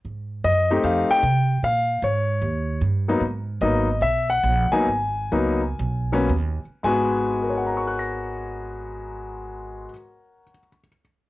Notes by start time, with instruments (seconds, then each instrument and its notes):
0.05 upright bass G#2
0.44 upright bass F#2, grand piano D#5
0.70 grand piano A3 C4 D#4 G4
0.83 upright bass F2, grand piano F5
1.09 grand piano G5, muted upright bass stroke
1.23 upright bass C3
1.63 upright bass A#2, grand piano F5
2.02 upright bass G#2, grand piano C#5
2.41 upright bass D#2
2.81 upright bass G2
3.08 grand piano F#3 A#3 B3 D#4
3.21 upright bass G#2
3.61 upright bass G#1, grand piano F#3 A#3 B3 D#4 D#5
4.01 upright bass B1, grand piano E5
4.30 grand piano F#5
4.43 upright bass A#1
4.72 grand piano F#3 A#3 B3 D#4 G#5, muted upright bass stroke
4.86 upright bass G#1
5.32 upright bass C#2, grand piano F#3 A#3 B3 D#4
5.79 upright bass B1
6.12 grand piano F#3 A#3 B3 C#4
6.29 upright bass D#2
6.64 muted upright bass stroke
6.83 upright bass G#1, grand piano G#2 G#3 B3 F#4 G#5
7.42 grand piano A#4
7.50 grand piano C#5
7.58 grand piano F#5
7.67 grand piano A#5
7.77 grand piano C#6
7.87 grand piano F#6
7.99 grand piano A#6